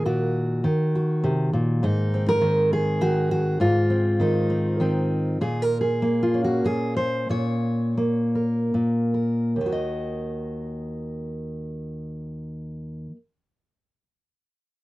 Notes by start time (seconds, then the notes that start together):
Already playing: D#3 A#4
0.06 A#2 F#4
0.64 D#3
0.95 F#4
1.24 C3
1.53 A#2
1.83 G#2 D#4
2.14 C4
2.29 A#4
2.41 D#3
2.73 G#4
3.01 D#3 F#4
3.31 F#4
3.60 G#2 F4
3.90 C4
4.20 D#3 D#4
4.50 C4
4.80 D#3 C4
5.41 A#2 G#4
5.62 A#4
5.81 G#4
6.02 A#3
6.23 F4
6.34 C#4
6.44 F#4
6.64 A#2 G#4
6.97 C5
7.29 A#2 C#5
7.97 A#3
8.35 A#4
8.74 A#2
9.14 A#4
9.56 D#2
9.61 D#3
9.66 F#4
9.72 D#5